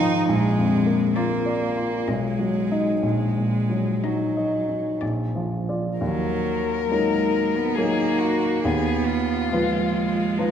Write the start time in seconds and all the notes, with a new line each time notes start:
Already playing: G#2 D#3 D#4 F4 D#5
0.00 F3
0.29 A#1 G#3
0.58 F2
0.86 A#3
1.16 A#3 F4 D5
1.46 D5
1.76 F4
2.08 B1 G#3 D#5
2.39 F#3
2.71 D#4 D#5
3.02 A#1 G#3
3.37 A#2
3.70 F#3
4.04 F#3 D#4 D#5
4.37 D#5
4.69 D#4
5.01 A#1 D5
5.35 F3
5.69 F4 D5
5.99 D#2 F#3 A#4
6.90 F#3 G#3 D#4 A#4
7.56 B3
7.75 F#3 A#3 D#4 G#4 A#4
8.19 F#4
8.62 D#2 B3 G#4
9.06 F4
9.51 F3 G#3 F4 B4
10.38 F3 D#4 F4 B4